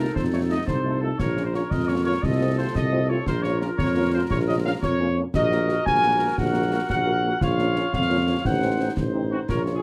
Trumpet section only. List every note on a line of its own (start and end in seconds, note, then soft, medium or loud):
0.00 0.14 A#4 medium
0.15 0.23 C5 medium
0.33 0.41 C#5 medium
0.50 0.66 D#5 medium
0.67 0.99 C5 medium
1.01 1.18 A4 medium
1.18 1.43 C#5 medium
1.45 1.49 C5 medium
1.54 1.70 C#5 medium
1.71 1.88 D#5 medium
1.88 2.04 C#5 medium
2.05 2.21 C#5 medium
2.23 2.58 D#5 medium
2.58 2.74 C5 medium
2.75 3.07 D#5 medium
3.09 3.27 C#5 medium
3.27 3.43 C5 medium
3.43 3.59 C#5 medium
3.61 3.69 A#4 medium
3.78 4.10 C#5 loud
4.13 4.21 C5 medium
4.30 4.38 C#5 loud
4.48 4.56 D#5 medium
4.65 4.73 F5 loud
4.82 5.20 C#5 loud
5.34 5.82 D#5 loud
5.85 6.34 G#5 loud
6.38 6.89 F#5 medium
6.90 7.38 F#5 loud
7.42 7.93 F5 loud
7.94 8.42 F5 loud
8.46 8.94 F#5 medium
9.31 9.39 F#4 medium
9.49 9.61 A#4 medium
9.75 9.82 G#4 medium